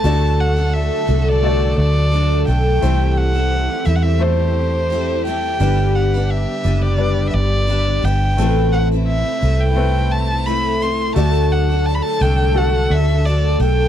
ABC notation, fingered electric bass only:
X:1
M:4/4
L:1/16
Q:"Swing 16ths" 1/4=86
K:Dmix
V:1 name="Fingered electric bass" clef=bass
D,,4- D,, z C,,4 D,,4 B,,,2 | C,,4- C,, z E,,8- E,,2 | G,,,4- G,,, z F,,,4 G,,,4 G,,,2 | A,,,4- A,,, z C,,8- C,,2 |
D,,4- D,, z C,,4 D,,4 B,,,2 |]